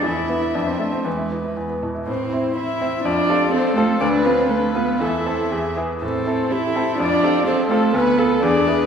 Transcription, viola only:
\new Staff \with { instrumentName = "Viola" } { \time 2/4 \key a \minor \tempo 4 = 122 r8 b8 r8 a8 | r8 e8 r8 e8 | e'2 | f'8 g'8 a'4 |
b'4 b'4 | a'4 gis'8 r8 | a'4 g'4 | f'8 g'8 a'4 |
b'8 a'8 gis'8 b'8 | }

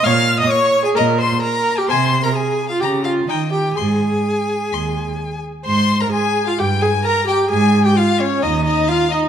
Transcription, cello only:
\new Staff \with { instrumentName = "Cello" } { \clef bass \time 4/4 \key aes \major \tempo 4 = 130 bes,4 r4 bes,4 r4 | c4 r4 des4 ees4 | aes,4 r4 ees,4 r4 | aes,4 r4 g,4 r4 |
aes,4 r4 ees,4 r4 | }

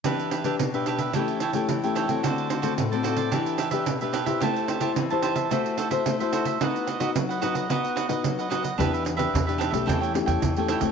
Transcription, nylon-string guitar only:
\new Staff \with { instrumentName = "Nylon-string guitar" } { \time 4/4 \key e \minor \tempo 4 = 110 << { <d' g' b'>8. <d' g' b'>8 <d' g' b'>8. <a cis' g'>8 r16 <a cis' g'>8 <a cis' g'>8 <a c' fis'>16~ | <a c' fis'>8. <a c' fis'>8 <a c' fis'>8. <d' g' b'>8 r16 <d' g' b'>8 <d' g' b'>8 <e' g' c''>16~ | <e' g' c''>8. <e' g' c''>8 <e' g' c''>8. <e' fis' c''>8 r16 <e' fis' c''>8 <e' fis' c''>8. | <dis' fis' b'>8 r16 <dis' fis' b'>8. <dis' fis' b'>8 <dis' fis' b'>8. <dis' fis' b'>8. <dis' fis' b'>16 r16 |
<d' g' b'>8. <d' g' b'>8 <d' g' b'>8 <a cis' g'>8. <a cis' g'>8 r16 <a cis' g'>8 <a c' fis'>16 | } \\ { e4 b,4 e4 e4 | d4 a,4 e4 b,4 | a4 e4 a4 a4 | b4 fis4 b4 fis4 |
e4 b,4 e4 e4 | } >> }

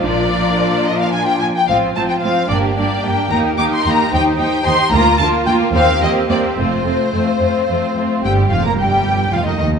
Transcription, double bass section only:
\new Staff \with { instrumentName = "Double bass section" } { \clef bass \time 6/8 \key bes \mixolydian \tempo 4. = 73 bes,,4 r2 | \key bes \major a,,8 r4 g,,8 r4 | ees,8 r4 ees,8 r4 | d,8 r4 ees,8 r4 |
f,,8 r2 r8 | g,,8 f,,16 r16 g,,4 f,,16 r16 ees,8 | }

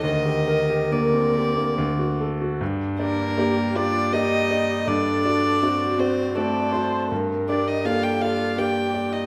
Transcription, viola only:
\new Staff \with { instrumentName = "Viola" } { \time 3/4 \key g \minor \tempo 4 = 80 bes'2~ bes'8 r8 | d'4 g'8 f'8 g'4 | a'4 fis'4 d''8 c''8 | bes'4 a'4 g'4 | }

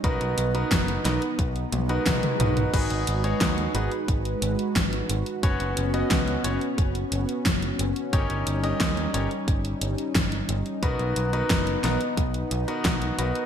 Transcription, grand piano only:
\new Staff \with { instrumentName = "Grand piano" } { \time 4/4 \key b \major \tempo 4 = 89 <b dis' fis' ais' b'>8. <b dis' fis' ais' b'>8. <b dis' fis' ais' b'>16 r4 <b dis' fis' ais' b'>8. <b dis' fis' ais' b'>8 | <b dis' fis' gis' b'>8. <b dis' fis' gis' cis''>8. <b dis' fis' gis' b'>16 r2 r16 | <b cis' fis' b' cis''>8. <b cis' fis' b' dis''>8. <b cis' fis' b' cis''>16 r2 r16 | <cis' dis' g' ais' cis''>8. <cis' dis' g' ais' dis''>8. <cis' dis' g' ais' cis''>16 r2 r16 |
<b dis' fis' ais' b'>8. <b dis' fis' ais' b'>8. <b dis' fis' ais' b'>16 r4 <b dis' fis' ais' b'>8. <b dis' fis' ais' b'>8 | }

